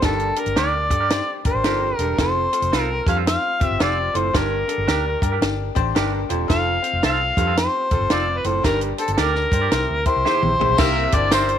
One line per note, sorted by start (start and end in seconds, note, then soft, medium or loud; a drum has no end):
0.02 0.30 G1 loud
0.02 0.30 G2 medium
0.02 0.87 G2 medium
0.02 0.30 D4 medium
0.02 0.30 G4 medium
0.02 0.41 A4 medium
0.02 0.31 A#4 medium
0.02 kick medium
0.02 snare medium
0.02 closed hi-hat medium
0.19 closed hi-hat soft
0.36 0.52 D4 medium
0.36 0.52 G4 medium
0.36 0.52 A#4 medium
0.36 0.57 A#4 medium
0.36 closed hi-hat medium
0.46 0.54 G1 medium
0.46 closed hi-hat soft
0.56 0.90 D2 medium
0.56 0.72 D4 medium
0.56 0.84 D4 medium
0.56 0.73 G4 medium
0.56 0.84 G4 medium
0.56 0.84 A#4 medium
0.56 0.73 A#4 medium
0.56 1.42 D5 medium
0.56 snare medium
0.56 closed hi-hat medium
0.90 1.20 G2 medium
0.90 1.06 D4 medium
0.90 1.06 G4 medium
0.90 1.07 A4 medium
0.90 kick medium
0.90 closed hi-hat medium
1.00 1.08 D4 soft
1.00 1.08 G4 medium
1.00 1.08 A#4 medium
1.10 1.38 D4 medium
1.10 1.38 G4 medium
1.10 1.38 C5 medium
1.10 snare loud
1.10 closed hi-hat medium
1.45 1.53 G1 medium
1.45 1.60 D4 medium
1.45 1.61 G4 medium
1.45 1.61 A#4 medium
1.45 1.97 C5 medium
1.45 kick medium
1.45 closed hi-hat medium
1.54 1.64 A1 medium
1.64 1.91 G1 medium
1.64 1.92 F2 medium
1.64 1.80 D4 medium
1.64 1.92 D4 medium
1.64 1.80 G4 medium
1.64 1.92 G4 medium
1.64 1.92 A#4 medium
1.64 1.81 A#4 medium
1.64 snare loud
1.64 closed hi-hat medium
1.97 2.14 E1 medium
1.97 2.15 G2 medium
1.97 2.15 D4 medium
1.97 2.15 G4 medium
1.97 2.15 A4 medium
1.97 2.15 A#4 medium
1.97 closed hi-hat medium
2.18 2.46 F1 loud
2.18 2.46 F2 medium
2.18 2.46 C4 medium
2.18 2.46 F4 medium
2.18 2.46 A4 loud
2.18 2.81 C5 medium
2.18 kick medium
2.18 snare loud
2.18 closed hi-hat medium
2.52 2.68 C4 medium
2.52 2.68 F4 medium
2.52 2.68 A4 medium
2.52 closed hi-hat medium
2.62 2.70 F1 medium
2.62 closed hi-hat soft
2.72 2.99 C2 medium
2.72 2.88 C4 medium
2.72 3.00 C4 medium
2.72 3.00 F4 medium
2.72 2.89 F4 medium
2.72 3.00 A4 medium
2.72 2.89 A4 medium
2.72 snare medium
2.72 closed hi-hat medium
2.81 3.04 A#4 medium
3.06 3.36 F2 medium
3.06 3.22 G2 medium
3.06 3.22 C4 medium
3.06 3.22 F4 medium
3.06 3.22 A4 medium
3.06 3.17 F5 medium
3.06 kick medium
3.06 closed hi-hat medium
3.16 3.24 C4 soft
3.16 3.24 F4 medium
3.16 3.24 A4 medium
3.26 3.54 C4 medium
3.26 3.54 F4 medium
3.26 3.54 C5 medium
3.26 3.64 F5 medium
3.26 snare loud
3.26 closed hi-hat loud
3.60 3.69 F1 medium
3.60 3.76 C4 loud
3.60 3.76 F4 medium
3.60 3.76 G4 loud
3.60 kick medium
3.60 closed hi-hat medium
3.64 3.83 E5 medium
3.71 3.78 G1 medium
3.79 4.08 F1 medium
3.79 4.07 C4 medium
3.79 3.96 C4 medium
3.79 4.07 F4 medium
3.79 3.96 F4 medium
3.79 4.08 G4 loud
3.79 3.97 A4 medium
3.79 4.19 D5 medium
3.79 snare loud
3.79 closed hi-hat medium
4.14 4.30 F#1 medium
4.14 4.30 A2 medium
4.14 4.30 C4 medium
4.14 4.30 F4 medium
4.14 4.30 A4 medium
4.14 4.38 C5 medium
4.14 closed hi-hat medium
4.33 4.62 G1 medium
4.33 4.61 G2 medium
4.33 5.18 G2 medium
4.33 4.61 D4 medium
4.33 4.61 G4 medium
4.33 4.61 A#4 medium
4.33 5.43 A#4 medium
4.33 kick medium
4.33 snare loud
4.33 closed hi-hat medium
4.68 4.84 D4 medium
4.68 4.84 G4 medium
4.68 4.84 A4 medium
4.68 closed hi-hat medium
4.78 4.86 G1 medium
4.87 5.15 D2 medium
4.87 5.04 D4 medium
4.87 5.15 D4 medium
4.87 5.04 G4 medium
4.87 5.16 G4 medium
4.87 5.16 A#4 medium
4.87 5.04 A#4 medium
4.87 snare loud
4.87 closed hi-hat medium
5.22 5.38 G2 medium
5.22 5.38 D4 medium
5.22 5.38 G4 medium
5.22 5.38 A#4 medium
5.22 kick medium
5.22 closed hi-hat medium
5.32 5.40 D4 soft
5.32 5.39 G4 medium
5.32 5.39 A#4 medium
5.41 5.69 G1 medium
5.41 5.69 D4 medium
5.41 5.69 G4 medium
5.41 5.69 A#4 medium
5.41 snare loud
5.41 closed hi-hat medium
5.75 5.92 A1 medium
5.75 5.91 D4 loud
5.75 5.91 G4 loud
5.75 5.92 C5 loud
5.75 kick medium
5.75 closed hi-hat medium
5.95 6.23 G1 medium
5.95 6.23 G2 medium
5.95 6.23 D4 loud
5.95 6.12 D4 medium
5.95 6.23 G4 medium
5.95 6.12 G4 medium
5.95 6.23 A#4 loud
5.95 6.12 A#4 medium
5.95 snare loud
5.95 closed hi-hat medium
6.29 6.45 E1 medium
6.29 6.46 F2 medium
6.29 6.45 D4 medium
6.29 6.45 G4 medium
6.29 6.45 C5 medium
6.29 closed hi-hat medium
6.48 6.77 F1 medium
6.48 6.77 F2 medium
6.48 6.76 C4 medium
6.48 6.76 F4 medium
6.48 6.76 A4 loud
6.48 7.00 F5 medium
6.48 kick medium
6.48 snare loud
6.48 closed hi-hat medium
6.82 6.98 C4 medium
6.82 6.99 F4 medium
6.82 6.99 C5 medium
6.82 closed hi-hat medium
6.93 7.01 F1 medium
7.03 7.30 C2 medium
7.03 7.30 C4 medium
7.03 7.19 C4 medium
7.03 7.30 F4 medium
7.03 7.19 F4 medium
7.03 7.31 A4 medium
7.03 7.20 A4 medium
7.03 7.54 F5 loud
7.03 snare loud
7.03 closed hi-hat medium
7.37 7.66 F2 loud
7.37 7.53 G2 medium
7.37 7.53 C4 medium
7.37 7.53 F4 medium
7.37 7.53 A4 medium
7.37 kick medium
7.37 closed hi-hat medium
7.47 7.55 C4 soft
7.47 7.54 F4 medium
7.47 7.54 A4 medium
7.56 7.84 C4 medium
7.56 7.84 F4 medium
7.56 7.84 G4 medium
7.56 8.14 C5 loud
7.56 snare loud
7.56 closed hi-hat loud
7.91 7.99 F1 medium
7.91 8.07 C4 medium
7.91 8.07 F4 medium
7.91 8.07 A4 loud
7.91 kick medium
7.91 closed hi-hat medium
8.00 8.08 G1 medium
8.10 8.38 F1 loud
8.10 8.26 C4 medium
8.10 8.38 C4 medium
8.10 8.27 F4 medium
8.10 8.38 F4 medium
8.10 8.27 A4 medium
8.10 8.38 C5 loud
8.10 8.39 D5 medium
8.10 snare loud
8.10 closed hi-hat medium
8.38 8.48 B4 medium
8.44 8.60 F#1 medium
8.44 8.60 A2 medium
8.44 8.60 C4 medium
8.44 8.60 F4 medium
8.44 8.61 A4 medium
8.44 8.64 C5 medium
8.44 closed hi-hat medium
8.63 8.91 G1 medium
8.63 9.48 G2 medium
8.63 8.92 G2 medium
8.63 8.91 D4 medium
8.63 8.91 G4 medium
8.63 8.91 A#4 loud
8.63 8.80 A#4 medium
8.63 kick medium
8.63 snare loud
8.63 closed hi-hat medium
8.81 closed hi-hat soft
8.98 9.14 D4 medium
8.98 9.14 G4 medium
8.98 9.12 A4 medium
8.98 9.14 C5 medium
8.98 closed hi-hat medium
9.08 9.16 G1 medium
9.08 closed hi-hat soft
9.13 9.20 A4 medium
9.17 9.45 D2 medium
9.17 9.46 D4 medium
9.17 9.34 G4 medium
9.17 9.46 G4 medium
9.17 9.46 A4 medium
9.17 9.34 A#4 medium
9.17 10.06 A#4 medium
9.17 9.34 D5 medium
9.17 snare medium
9.17 closed hi-hat medium
9.35 snare soft
9.52 9.67 G2 medium
9.52 9.68 D4 medium
9.52 9.68 G4 medium
9.52 9.68 C5 medium
9.52 kick medium
9.52 closed hi-hat medium
9.61 9.69 G4 soft
9.61 9.69 A#4 medium
9.61 9.69 D5 medium
9.71 9.85 C2 loud
9.71 10.55 C3 medium
9.71 9.99 E4 medium
9.71 9.99 G4 medium
9.71 9.99 C5 medium
9.71 snare loud
9.71 closed hi-hat loud
9.90 10.03 D2 medium
10.06 10.21 E4 loud
10.06 10.21 G4 medium
10.06 10.22 A#4 loud
10.06 10.82 C5 loud
10.06 kick medium
10.06 closed hi-hat medium
10.16 10.24 C2 medium
10.25 10.52 E2 medium
10.25 10.41 E4 medium
10.25 10.52 E4 loud
10.25 10.52 G4 medium
10.25 10.41 G4 medium
10.25 10.53 C5 loud
10.25 10.41 C5 medium
10.25 snare medium
10.43 10.56 A#1 medium
10.43 mid tom medium
10.59 10.67 A#1 medium
10.59 10.74 E2 medium
10.59 10.74 E4 medium
10.59 10.74 G4 medium
10.59 10.75 C5 medium
10.59 floor tom loud
10.69 10.77 B1 medium
10.78 11.06 C2 loud
10.78 11.20 C3 medium
10.78 11.59 C3 medium
10.78 11.06 A#3 loud
10.78 11.06 E4 medium
10.78 11.06 G4 medium
10.78 11.06 A#4 loud
10.78 11.06 A#4 medium
10.78 11.06 C5 loud
10.78 11.16 E5 loud
10.78 kick loud
10.78 snare loud
10.78 crash medium
10.78 tambourine medium
11.12 11.55 G1 medium
11.12 11.59 D4 medium
11.12 11.28 E4 medium
11.12 11.28 G4 medium
11.12 11.28 A#4 medium
11.12 11.28 C5 medium
11.12 11.59 D5 medium
11.12 11.33 D5 loud
11.12 kick medium
11.12 closed hi-hat medium
11.31 11.48 E4 medium
11.31 11.59 E4 medium
11.31 11.59 G4 medium
11.31 11.59 A#4 medium
11.31 11.48 A#4 medium
11.31 11.48 C5 medium
11.31 11.59 C5 loud
11.31 11.59 D5 medium
11.31 snare loud
11.31 closed hi-hat medium
11.31 tambourine loud
11.49 closed hi-hat soft